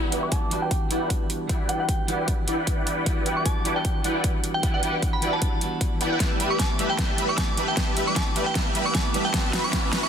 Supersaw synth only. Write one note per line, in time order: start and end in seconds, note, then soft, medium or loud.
0.00 0.10 E4 medium
0.00 0.10 B4 medium
0.00 0.10 D5 medium
0.00 0.10 F#5 medium
0.00 0.10 G5 medium
0.12 0.31 E4 medium
0.12 0.31 B4 medium
0.12 0.31 D5 medium
0.12 0.31 F#5 medium
0.12 0.31 G5 loud
0.52 0.64 E4 medium
0.52 0.64 B4 medium
0.52 0.64 D5 medium
0.52 0.64 F#5 medium
0.52 0.64 G5 medium
0.91 1.10 E4 loud
0.91 1.10 B4 medium
0.91 1.10 D5 medium
0.91 1.10 F#5 medium
0.91 1.10 G5 loud
1.49 1.67 E4 medium
1.49 1.67 B4 medium
1.49 1.67 D5 medium
1.49 1.67 F#5 medium
1.49 1.67 G5 loud
1.69 1.82 E4 medium
1.69 1.82 B4 medium
1.69 1.82 D5 medium
1.69 1.82 F#5 medium
1.69 1.82 G5 medium
2.08 2.27 E4 medium
2.08 2.27 B4 medium
2.08 2.27 D5 medium
2.08 2.27 F#5 medium
2.08 2.27 G5 medium
2.48 3.04 E4 medium
2.48 3.04 B4 medium
2.48 3.04 D5 medium
2.48 3.04 F#5 medium
2.48 3.04 G5 medium
3.06 3.24 E4 medium
3.06 3.24 D5 medium
3.26 3.45 E4 medium
3.26 3.45 B4 medium
3.26 3.45 D5 medium
3.26 3.45 F#5 medium
3.26 3.45 G5 loud
3.65 3.78 E4 medium
3.65 3.78 B4 medium
3.65 3.78 D5 medium
3.65 3.78 F#5 medium
3.65 3.78 G5 medium
4.05 4.23 E4 medium
4.05 4.23 B4 medium
4.05 4.23 D5 medium
4.05 4.23 F#5 medium
4.05 4.23 G5 loud
4.63 4.81 E4 medium
4.63 4.81 B4 medium
4.63 4.81 D5 medium
4.63 4.81 F#5 medium
4.63 4.81 G5 loud
4.83 4.96 E4 medium
4.83 4.96 B4 medium
4.83 4.96 D5 medium
4.83 4.96 F#5 medium
4.83 4.96 G5 medium
5.22 5.41 E4 medium
5.22 5.41 B4 medium
5.22 5.41 D5 medium
5.22 5.41 F#5 medium
5.22 5.41 G5 medium
6.01 6.10 E4 medium
6.01 6.10 B4 medium
6.01 6.10 D5 medium
6.01 6.10 F#5 medium
6.01 6.10 G5 loud
6.12 6.19 E4 loud
6.12 6.19 B4 medium
6.12 6.19 D5 medium
6.12 6.19 F#5 medium
6.12 6.19 G5 loud
6.20 6.38 G3 medium
6.20 6.38 G4 medium
6.20 6.38 B4 medium
6.20 6.38 E5 medium
6.20 6.38 A5 medium
6.40 6.59 G3 medium
6.40 6.59 G4 medium
6.40 6.59 B4 medium
6.40 6.59 E5 medium
6.40 6.59 B5 medium
6.79 6.92 G3 medium
6.79 6.92 G4 medium
6.79 6.92 B4 medium
6.79 6.92 E5 medium
6.79 6.92 B5 medium
6.99 7.16 G3 medium
6.99 7.16 B4 medium
6.99 7.16 A5 medium
7.18 7.37 G3 medium
7.18 7.37 G4 medium
7.18 7.37 B4 medium
7.18 7.37 E5 medium
7.18 7.37 B5 loud
7.58 7.70 G3 medium
7.58 7.70 G4 medium
7.58 7.70 B4 medium
7.58 7.70 E5 medium
7.58 7.70 B5 medium
7.77 7.95 B4 medium
7.97 8.16 G3 medium
7.97 8.16 G4 medium
7.97 8.16 B4 medium
7.97 8.16 E5 medium
7.97 8.16 B5 medium
8.36 8.48 G3 medium
8.36 8.48 G4 medium
8.36 8.48 B4 medium
8.36 8.48 E5 medium
8.36 8.48 B5 medium
8.56 8.73 G3 medium
8.56 8.73 G4 medium
8.56 8.73 B4 medium
8.56 8.73 E5 medium
8.56 8.73 A5 medium
8.75 8.94 G3 medium
8.75 8.94 G4 medium
8.75 8.94 B4 medium
8.75 8.94 E5 medium
8.75 8.94 B5 loud
9.14 9.27 G3 medium
9.14 9.27 G4 medium
9.14 9.27 B4 medium
9.14 9.27 E5 medium
9.14 9.27 B5 medium
9.34 9.52 F#3 medium
9.34 9.52 F#4 medium
9.34 9.51 B4 medium
9.34 9.52 E5 medium
9.34 9.52 A5 medium
9.54 9.72 F#3 medium
9.54 9.72 F#4 medium
9.54 9.72 B4 medium
9.54 9.72 E5 medium
9.54 9.72 B5 loud
9.73 9.91 F#3 medium
9.73 9.91 F#4 medium
9.73 9.91 B4 medium
9.73 9.91 E5 medium
9.73 9.91 A5 medium
9.93 10.09 F#3 loud
9.93 10.09 F#4 medium
9.93 10.09 B4 medium
9.93 10.09 E5 medium
9.93 10.09 B5 loud